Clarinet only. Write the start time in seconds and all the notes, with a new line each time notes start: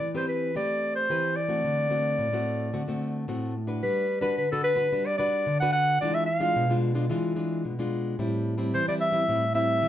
Already playing: D5
0.17 C5
0.28 B4
0.57 D5
0.95 C5
1.37 D5
3.83 B4
4.21 B4
4.37 B4
4.52 A4
4.64 B4
5.06 D5
5.18 D5
5.60 F#5
5.72 F#5
6.01 D5
6.14 E5
6.26 F5
8.74 C5
8.88 D5
9.01 E5
9.55 E5